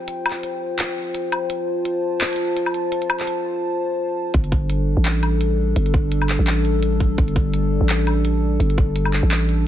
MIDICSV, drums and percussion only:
0, 0, Header, 1, 2, 480
1, 0, Start_track
1, 0, Tempo, 355030
1, 107, Time_signature, 4, 2, 24, 8
1, 13081, End_track
2, 0, Start_track
2, 0, Title_t, "Drums"
2, 106, Note_on_c, 9, 42, 75
2, 241, Note_off_c, 9, 42, 0
2, 347, Note_on_c, 9, 77, 76
2, 413, Note_on_c, 9, 39, 34
2, 482, Note_off_c, 9, 77, 0
2, 548, Note_off_c, 9, 39, 0
2, 587, Note_on_c, 9, 42, 60
2, 722, Note_off_c, 9, 42, 0
2, 1065, Note_on_c, 9, 39, 115
2, 1065, Note_on_c, 9, 42, 74
2, 1200, Note_off_c, 9, 39, 0
2, 1200, Note_off_c, 9, 42, 0
2, 1549, Note_on_c, 9, 42, 63
2, 1684, Note_off_c, 9, 42, 0
2, 1789, Note_on_c, 9, 42, 34
2, 1789, Note_on_c, 9, 77, 52
2, 1924, Note_off_c, 9, 42, 0
2, 1924, Note_off_c, 9, 77, 0
2, 2026, Note_on_c, 9, 42, 76
2, 2161, Note_off_c, 9, 42, 0
2, 2506, Note_on_c, 9, 42, 63
2, 2641, Note_off_c, 9, 42, 0
2, 2987, Note_on_c, 9, 39, 111
2, 2987, Note_on_c, 9, 42, 35
2, 3031, Note_off_c, 9, 42, 0
2, 3031, Note_on_c, 9, 42, 42
2, 3069, Note_off_c, 9, 42, 0
2, 3069, Note_on_c, 9, 42, 46
2, 3121, Note_off_c, 9, 42, 0
2, 3121, Note_on_c, 9, 42, 54
2, 3122, Note_off_c, 9, 39, 0
2, 3148, Note_off_c, 9, 42, 0
2, 3148, Note_on_c, 9, 42, 60
2, 3192, Note_off_c, 9, 42, 0
2, 3192, Note_on_c, 9, 42, 65
2, 3327, Note_off_c, 9, 42, 0
2, 3469, Note_on_c, 9, 42, 64
2, 3601, Note_on_c, 9, 77, 37
2, 3605, Note_off_c, 9, 42, 0
2, 3709, Note_on_c, 9, 42, 36
2, 3736, Note_off_c, 9, 77, 0
2, 3844, Note_off_c, 9, 42, 0
2, 3948, Note_on_c, 9, 42, 81
2, 4081, Note_off_c, 9, 42, 0
2, 4081, Note_on_c, 9, 42, 36
2, 4187, Note_on_c, 9, 77, 82
2, 4216, Note_off_c, 9, 42, 0
2, 4321, Note_on_c, 9, 39, 36
2, 4322, Note_off_c, 9, 77, 0
2, 4426, Note_on_c, 9, 42, 67
2, 4456, Note_off_c, 9, 39, 0
2, 4562, Note_off_c, 9, 42, 0
2, 5867, Note_on_c, 9, 42, 84
2, 5871, Note_on_c, 9, 36, 115
2, 6002, Note_off_c, 9, 42, 0
2, 6002, Note_on_c, 9, 42, 36
2, 6006, Note_off_c, 9, 36, 0
2, 6111, Note_on_c, 9, 36, 109
2, 6137, Note_off_c, 9, 42, 0
2, 6247, Note_off_c, 9, 36, 0
2, 6350, Note_on_c, 9, 42, 67
2, 6485, Note_off_c, 9, 42, 0
2, 6831, Note_on_c, 9, 39, 121
2, 6831, Note_on_c, 9, 42, 82
2, 6966, Note_off_c, 9, 39, 0
2, 6966, Note_off_c, 9, 42, 0
2, 7068, Note_on_c, 9, 42, 39
2, 7068, Note_on_c, 9, 77, 39
2, 7204, Note_off_c, 9, 42, 0
2, 7204, Note_off_c, 9, 77, 0
2, 7311, Note_on_c, 9, 42, 69
2, 7446, Note_off_c, 9, 42, 0
2, 7790, Note_on_c, 9, 42, 83
2, 7922, Note_off_c, 9, 42, 0
2, 7922, Note_on_c, 9, 42, 38
2, 8030, Note_on_c, 9, 36, 110
2, 8057, Note_off_c, 9, 42, 0
2, 8165, Note_off_c, 9, 36, 0
2, 8270, Note_on_c, 9, 42, 69
2, 8404, Note_on_c, 9, 77, 37
2, 8405, Note_off_c, 9, 42, 0
2, 8509, Note_on_c, 9, 39, 63
2, 8539, Note_off_c, 9, 77, 0
2, 8644, Note_off_c, 9, 39, 0
2, 8748, Note_on_c, 9, 39, 124
2, 8748, Note_on_c, 9, 42, 81
2, 8884, Note_off_c, 9, 39, 0
2, 8884, Note_off_c, 9, 42, 0
2, 8989, Note_on_c, 9, 42, 40
2, 9124, Note_off_c, 9, 42, 0
2, 9229, Note_on_c, 9, 42, 68
2, 9364, Note_off_c, 9, 42, 0
2, 9469, Note_on_c, 9, 36, 64
2, 9605, Note_off_c, 9, 36, 0
2, 9709, Note_on_c, 9, 36, 124
2, 9709, Note_on_c, 9, 42, 82
2, 9843, Note_off_c, 9, 42, 0
2, 9843, Note_on_c, 9, 42, 37
2, 9845, Note_off_c, 9, 36, 0
2, 9950, Note_on_c, 9, 36, 111
2, 9978, Note_off_c, 9, 42, 0
2, 10085, Note_off_c, 9, 36, 0
2, 10189, Note_on_c, 9, 42, 67
2, 10324, Note_off_c, 9, 42, 0
2, 10670, Note_on_c, 9, 39, 127
2, 10670, Note_on_c, 9, 42, 82
2, 10805, Note_off_c, 9, 39, 0
2, 10805, Note_off_c, 9, 42, 0
2, 10911, Note_on_c, 9, 42, 37
2, 10911, Note_on_c, 9, 77, 36
2, 11047, Note_off_c, 9, 42, 0
2, 11047, Note_off_c, 9, 77, 0
2, 11151, Note_on_c, 9, 42, 68
2, 11286, Note_off_c, 9, 42, 0
2, 11631, Note_on_c, 9, 42, 77
2, 11762, Note_off_c, 9, 42, 0
2, 11762, Note_on_c, 9, 42, 35
2, 11869, Note_on_c, 9, 36, 110
2, 11898, Note_off_c, 9, 42, 0
2, 12004, Note_off_c, 9, 36, 0
2, 12110, Note_on_c, 9, 42, 66
2, 12242, Note_on_c, 9, 77, 36
2, 12245, Note_off_c, 9, 42, 0
2, 12348, Note_on_c, 9, 39, 62
2, 12377, Note_off_c, 9, 77, 0
2, 12483, Note_off_c, 9, 39, 0
2, 12590, Note_on_c, 9, 39, 124
2, 12590, Note_on_c, 9, 42, 80
2, 12725, Note_off_c, 9, 39, 0
2, 12725, Note_off_c, 9, 42, 0
2, 12828, Note_on_c, 9, 42, 36
2, 12963, Note_off_c, 9, 42, 0
2, 13081, End_track
0, 0, End_of_file